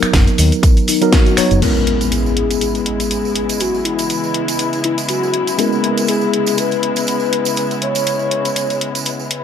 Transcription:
0.00 0.98 F#3 medium
0.00 0.99 B3 medium
0.00 0.99 D#4 medium
0.00 1.00 A#4 loud
0.00 finger snap medium
0.00 muted fingered electric bass stroke soft
0.00 closed hi-hat medium
0.00 tambourine soft
0.00 cabasa soft
0.13 0.25 F#1 medium
0.13 kick loud
0.13 snare loud
0.13 closed hi-hat medium
0.13 tambourine soft
0.13 cabasa soft
0.27 closed hi-hat soft
0.27 tambourine soft
0.27 cabasa soft
0.38 0.50 D#2 medium
0.38 open hi-hat medium
0.38 tambourine medium
0.38 cabasa medium
0.52 closed hi-hat medium
0.52 tambourine soft
0.52 cabasa soft
0.63 kick loud
0.63 closed hi-hat medium
0.63 tambourine medium
0.63 cabasa soft
0.77 closed hi-hat soft
0.77 tambourine soft
0.77 cabasa soft
0.88 1.14 D#4 medium
0.88 open hi-hat loud
0.88 tambourine medium
0.88 cabasa medium
1.01 1.35 F#3 medium
1.01 1.35 B3 medium
1.01 1.35 D#4 medium
1.01 1.35 A#4 loud
1.01 closed hi-hat medium
1.01 tambourine soft
1.01 cabasa soft
1.12 1.63 F#4 medium
1.12 kick loud
1.12 snare loud
1.12 closed hi-hat medium
1.12 tambourine soft
1.12 cabasa soft
1.26 closed hi-hat soft
1.26 tambourine soft
1.26 cabasa soft
1.37 1.59 F#3 medium
1.37 1.60 B3 medium
1.37 1.60 D#4 medium
1.37 1.60 C#5 loud
1.37 finger snap medium
1.37 muted fingered electric bass stroke soft
1.37 open hi-hat medium
1.37 tambourine medium
1.37 cabasa medium
1.51 1.60 F#1 medium
1.51 closed hi-hat medium
1.51 tambourine soft
1.51 cabasa soft
1.62 9.44 C#3 medium
1.62 5.56 G#3 medium
1.62 9.44 G#3 medium
1.62 9.27 B3 medium
1.62 5.57 B3 medium
1.62 5.56 C#4 medium
1.62 9.44 E4 medium
1.62 5.57 E4 medium
1.62 2.13 A#4 medium
1.62 closed hi-hat medium
1.62 crash medium
1.62 tambourine medium
1.62 impact medium
1.77 tambourine soft
1.87 closed hi-hat medium
2.01 closed hi-hat soft
2.01 tambourine medium
2.11 2.60 G#4 medium
2.11 closed hi-hat medium
2.11 tambourine medium
2.26 tambourine soft
2.37 closed hi-hat medium
2.51 closed hi-hat soft
2.51 tambourine medium
2.61 3.62 G#4 medium
2.61 closed hi-hat medium
2.61 tambourine medium
2.75 closed hi-hat soft
2.75 tambourine soft
2.86 closed hi-hat medium
3.00 closed hi-hat soft
3.00 tambourine medium
3.11 closed hi-hat medium
3.11 tambourine medium
3.25 tambourine soft
3.35 closed hi-hat medium
3.49 closed hi-hat soft
3.49 tambourine medium
3.60 3.84 F#4 medium
3.60 closed hi-hat medium
3.60 tambourine medium
3.74 tambourine soft
3.85 4.80 E4 medium
3.85 closed hi-hat medium
3.99 closed hi-hat soft
3.99 tambourine medium
4.10 closed hi-hat medium
4.10 tambourine medium
4.24 tambourine soft
4.34 closed hi-hat medium
4.48 closed hi-hat soft
4.48 tambourine medium
4.59 closed hi-hat medium
4.59 tambourine medium
4.73 closed hi-hat soft
4.73 tambourine soft
4.84 4.96 E4 medium
4.84 closed hi-hat medium
4.98 closed hi-hat soft
4.98 tambourine medium
5.09 5.60 F#4 medium
5.09 closed hi-hat medium
5.09 tambourine medium
5.23 tambourine soft
5.34 closed hi-hat medium
5.47 closed hi-hat soft
5.47 tambourine medium
5.58 9.28 G#3 medium
5.58 9.29 B3 medium
5.58 9.28 C#4 medium
5.58 9.28 E4 medium
5.58 6.10 A#4 loud
5.58 closed hi-hat medium
5.58 tambourine medium
5.72 tambourine soft
5.84 closed hi-hat medium
5.97 closed hi-hat soft
5.97 tambourine medium
6.07 6.60 G#4 loud
6.07 closed hi-hat medium
6.07 tambourine medium
6.21 tambourine soft
6.33 closed hi-hat medium
6.46 closed hi-hat soft
6.46 tambourine medium
6.58 7.58 B4 loud
6.58 closed hi-hat medium
6.58 tambourine medium
6.71 closed hi-hat soft
6.71 tambourine soft
6.83 closed hi-hat medium
6.96 closed hi-hat soft
6.96 tambourine medium
7.07 closed hi-hat medium
7.07 tambourine medium
7.20 tambourine soft
7.33 closed hi-hat medium
7.45 closed hi-hat soft
7.45 tambourine medium
7.56 7.84 B4 loud
7.56 closed hi-hat medium
7.56 tambourine medium
7.71 closed hi-hat soft
7.71 tambourine soft
7.82 9.31 C#5 loud
7.82 closed hi-hat medium
7.95 closed hi-hat soft
7.95 tambourine medium
8.07 closed hi-hat medium
8.07 tambourine medium
8.19 tambourine soft
8.31 closed hi-hat medium
8.45 closed hi-hat soft
8.45 tambourine medium
8.56 closed hi-hat medium
8.56 tambourine medium
8.70 closed hi-hat soft
8.70 tambourine soft
8.81 closed hi-hat medium
8.95 closed hi-hat soft
8.95 tambourine medium
9.05 closed hi-hat medium
9.05 tambourine medium
9.20 tambourine soft
9.30 9.44 B3 medium
9.30 closed hi-hat medium

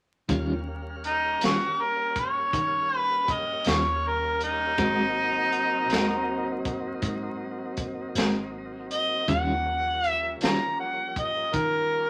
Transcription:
0.29 1.42 D#2 medium
0.29 0.52 D#3 medium
0.29 0.52 G3 medium
0.29 4.75 G3 medium
0.29 4.75 A#3 medium
0.29 4.75 C#4 medium
0.29 0.52 C#4 medium
0.29 0.53 F4 medium
0.29 4.75 F5 soft
0.29 kick medium
0.29 closed hi-hat medium
1.04 1.42 D#4 medium
1.04 closed hi-hat soft
1.41 2.50 A#1 medium
1.41 1.65 D#3 soft
1.41 1.65 G3 medium
1.41 1.64 C#4 medium
1.41 1.64 F4 medium
1.41 1.82 F#4 medium
1.41 snare medium
1.41 closed hi-hat medium
1.81 2.16 A#4 medium
2.16 2.98 C#5 medium
2.16 kick medium
2.16 closed hi-hat medium
2.53 3.62 D#3 medium
2.53 kick medium
2.53 closed hi-hat medium
2.98 3.33 B4 medium
3.28 3.71 D#5 medium
3.28 kick medium
3.28 closed hi-hat medium
3.64 4.75 D#2 medium
3.64 3.90 D#3 soft
3.64 3.89 G3 medium
3.64 3.89 C#4 medium
3.64 3.89 F4 medium
3.64 snare loud
3.64 closed hi-hat medium
3.69 4.09 C#5 medium
4.08 4.42 A#4 medium
4.41 6.63 D#4 medium
4.41 closed hi-hat soft
4.78 5.90 G#1 medium
4.78 9.25 F#3 medium
4.78 5.01 G#3 medium
4.78 9.25 A#3 medium
4.78 5.01 C4 medium
4.78 9.25 C4 medium
4.78 9.25 D#4 medium
4.78 5.01 F#4 medium
4.78 5.01 A#4 medium
4.78 kick medium
4.78 closed hi-hat medium
5.52 closed hi-hat soft
5.90 6.99 D#2 medium
5.90 6.14 G#3 medium
5.90 6.14 C4 medium
5.90 6.14 F#4 medium
5.90 6.14 A#4 medium
5.90 snare loud
5.90 closed hi-hat medium
6.65 kick medium
6.65 closed hi-hat soft
7.02 8.12 G#2 medium
7.02 kick medium
7.02 closed hi-hat medium
7.77 kick medium
7.77 closed hi-hat medium
8.15 9.24 G#1 medium
8.15 8.40 G#3 medium
8.15 8.39 C4 medium
8.15 8.39 F#4 medium
8.15 8.39 A#4 medium
8.15 snare medium
8.15 closed hi-hat medium
8.91 9.29 D#5 medium
8.91 closed hi-hat medium
9.27 10.40 D#2 medium
9.27 9.51 D#3 medium
9.27 12.10 F3 medium
9.27 12.10 G3 medium
9.27 9.51 G3 medium
9.27 12.10 A#3 medium
9.27 12.10 C#4 medium
9.27 9.52 C#4 medium
9.27 9.52 F4 medium
9.27 10.08 F#5 medium
9.27 kick medium
9.27 closed hi-hat medium
10.04 closed hi-hat soft
10.08 10.38 E5 medium
10.40 11.50 A#1 medium
10.40 10.65 D#3 soft
10.40 10.65 G3 medium
10.40 10.65 C#4 medium
10.40 10.64 F4 medium
10.40 10.79 A#5 medium
10.40 snare loud
10.40 closed hi-hat medium
10.80 11.16 F#5 medium
11.16 11.56 D#5 medium
11.16 kick medium
11.16 closed hi-hat soft
11.53 12.10 D#3 medium
11.53 12.10 A#4 medium
11.53 kick medium
11.53 closed hi-hat medium

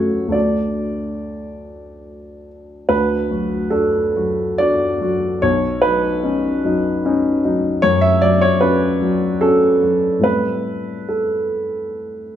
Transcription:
0.00 0.30 F#2 medium
0.00 0.29 A3 soft
0.00 0.37 C#4 soft
0.00 0.32 F#4 soft
0.00 0.37 A4 medium
0.00 0.34 C#5 medium
0.28 2.84 D2 soft
0.28 2.84 A3 soft
0.28 2.85 D4 soft
0.32 2.86 F#4 soft
0.32 2.48 D5 medium
2.89 5.38 D2 medium
2.89 3.72 B4 medium
3.31 3.69 F#3 soft
3.31 3.69 F#4 soft
3.70 4.11 D4 soft
3.70 4.12 F#4 soft
3.70 4.58 A4 medium
4.16 4.56 F#3 soft
4.16 4.56 F#4 soft
4.58 4.98 D4 soft
4.58 4.98 F#4 medium
4.58 5.42 D5 medium
5.01 5.38 F#3 soft
5.01 5.39 F#4 soft
5.42 7.78 B1 medium
5.42 5.83 C#5 medium
5.82 6.19 F#3 soft
5.82 6.19 D#4 medium
5.82 7.82 B4 medium
6.23 6.60 C#4 soft
6.23 6.59 D#4 soft
6.64 7.00 F#3 soft
6.64 7.01 D#4 soft
7.05 7.40 C#4 medium
7.05 7.41 D#4 medium
7.45 7.80 F#3 soft
7.45 7.80 D#4 medium
7.82 10.22 F#2 medium
7.82 8.02 C#5 loud
8.01 8.21 E5 medium
8.22 8.58 F#3 soft
8.22 8.58 F#4 medium
8.22 8.42 D5 loud
8.41 8.62 C#5 medium
8.61 8.98 C#4 soft
8.61 8.98 F#4 medium
8.61 9.42 B4 medium
9.01 9.38 F#3 soft
9.01 9.38 F#4 soft
9.41 9.79 C#4 soft
9.41 9.79 F#4 soft
9.41 10.24 A4 medium
9.83 10.21 F#3 soft
9.83 10.21 F#4 soft
10.19 12.36 A2 soft
10.19 12.36 G3 soft
10.19 12.36 C4 soft
10.19 12.36 E4 soft
10.24 11.09 B4 medium
11.09 12.36 A4 soft

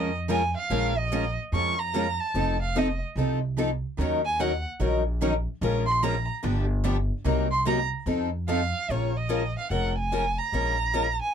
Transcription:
0.00 0.54 F2 medium
0.00 0.10 F3 medium
0.00 0.10 G#3 medium
0.00 0.11 C#4 medium
0.00 0.10 F4 medium
0.00 0.11 A#4 medium
0.00 0.15 D#5 medium
0.29 0.41 F3 medium
0.29 0.41 G#3 medium
0.29 0.41 C#4 medium
0.29 0.41 F4 loud
0.29 0.41 A#4 medium
0.29 0.55 G#5 medium
0.57 1.00 F5 medium
0.70 1.36 A#1 medium
0.70 0.92 F3 medium
0.70 0.92 G#3 medium
0.70 0.92 C#4 medium
0.70 0.92 F4 medium
0.70 0.92 A#4 medium
0.98 1.38 D#5 medium
1.12 1.23 F3 medium
1.12 1.23 G#3 medium
1.12 1.23 C#4 loud
1.12 1.23 F4 loud
1.12 1.24 A#4 medium
1.52 2.18 F2 medium
1.52 1.75 F3 medium
1.52 1.75 G#3 medium
1.52 1.75 C#4 medium
1.52 1.75 F4 medium
1.52 1.75 A#4 medium
1.52 1.81 C#6 medium
1.79 2.22 A#5 medium
1.94 2.05 F3 medium
1.94 2.05 G#3 medium
1.94 2.06 C#4 medium
1.94 2.06 F4 medium
1.94 2.06 A#4 medium
2.20 2.61 A5 medium
2.34 3.00 F1 medium
2.34 2.56 F3 medium
2.34 2.56 C4 medium
2.34 2.56 D#4 medium
2.34 2.57 A4 medium
2.62 2.80 F5 medium
2.76 2.87 F3 medium
2.76 2.87 C4 medium
2.76 2.87 D#4 medium
2.76 2.87 A4 loud
2.76 3.03 D#5 medium
3.16 3.81 C2 medium
3.16 3.38 F3 medium
3.16 3.39 C4 medium
3.16 3.39 D#4 medium
3.16 3.39 A4 medium
3.58 3.69 F3 medium
3.58 3.69 C4 medium
3.58 3.69 D#4 medium
3.58 3.69 A4 medium
3.98 4.64 D#2 medium
3.98 4.20 D#3 medium
3.98 4.21 F#3 medium
3.98 4.21 C#4 medium
3.98 4.21 D#4 medium
3.98 4.21 A#4 medium
4.25 4.42 G#5 loud
4.40 4.51 D#3 medium
4.40 4.51 F#3 loud
4.40 4.51 C#4 medium
4.40 4.51 D#4 medium
4.40 4.51 A#4 medium
4.40 4.66 F#5 medium
4.80 5.45 A#1 medium
4.80 5.02 D#3 medium
4.80 5.02 F#3 medium
4.80 5.02 C#4 medium
4.80 5.02 D#4 medium
4.80 5.02 A#4 medium
5.21 5.32 D#3 medium
5.21 5.33 F#3 medium
5.21 5.33 C#4 loud
5.21 5.33 D#4 loud
5.21 5.33 A#4 medium
5.61 6.27 A#1 medium
5.61 5.83 F3 medium
5.61 5.84 G#3 medium
5.61 5.84 C#4 medium
5.61 5.84 F4 medium
5.61 5.84 A#4 medium
5.86 6.05 C6 loud
6.03 6.14 F3 medium
6.03 6.15 G#3 medium
6.03 6.14 C#4 loud
6.03 6.15 F4 loud
6.03 6.15 A#4 medium
6.03 6.29 A#5 loud
6.43 7.09 G1 loud
6.43 6.65 D3 medium
6.43 6.65 F3 medium
6.43 6.65 B3 medium
6.43 6.65 D4 medium
6.43 6.65 G4 medium
6.84 6.95 D3 medium
6.84 6.96 F3 medium
6.84 6.96 B3 loud
6.84 6.96 D4 medium
6.84 6.96 G4 loud
7.25 7.90 C2 medium
7.25 7.47 C3 medium
7.25 7.47 F#3 medium
7.25 7.47 A#3 medium
7.25 7.47 D#4 medium
7.25 7.47 A#4 medium
7.52 7.66 C6 loud
7.65 7.77 C3 medium
7.65 7.78 F#3 medium
7.65 7.78 A#3 loud
7.65 7.78 D#4 medium
7.65 7.78 A#4 loud
7.65 7.82 A#5 medium
8.06 8.72 F2 medium
8.06 8.28 F3 medium
8.06 8.29 C4 medium
8.06 8.29 D#4 medium
8.06 8.29 A4 medium
8.48 8.59 F3 medium
8.48 8.60 C4 medium
8.48 8.60 D#4 medium
8.48 8.60 A4 loud
8.48 8.93 F5 medium
8.89 9.55 A#1 medium
8.89 9.11 F3 medium
8.89 9.11 G#3 medium
8.89 9.12 C#4 medium
8.89 9.11 F4 medium
8.89 9.12 A#4 medium
8.89 9.18 C#5 medium
9.17 9.57 D#5 medium
9.29 9.41 F3 medium
9.29 9.41 G#3 medium
9.29 9.41 C#4 medium
9.29 9.42 F4 medium
9.29 9.41 A#4 medium
9.59 9.72 F5 medium
9.70 10.36 F1 medium
9.70 9.92 F3 medium
9.70 9.92 G#3 medium
9.70 9.93 C#4 medium
9.70 9.93 F4 medium
9.70 9.93 A#4 medium
9.70 9.96 F#5 medium
9.98 10.40 G#5 loud
10.12 10.23 F3 medium
10.12 10.24 G#3 medium
10.12 10.24 C#4 medium
10.12 10.24 F4 medium
10.12 10.24 A#4 medium
10.38 11.20 A#5 medium
10.52 11.18 A#1 medium
10.52 10.75 F3 medium
10.52 10.75 G#3 medium
10.52 10.75 C#4 medium
10.52 10.75 F4 medium
10.52 10.75 A#4 medium
10.94 11.05 F3 medium
10.94 11.05 G#3 medium
10.94 11.05 C#4 medium
10.94 11.06 F4 medium
10.94 11.06 A#4 medium
11.22 11.34 G#5 medium

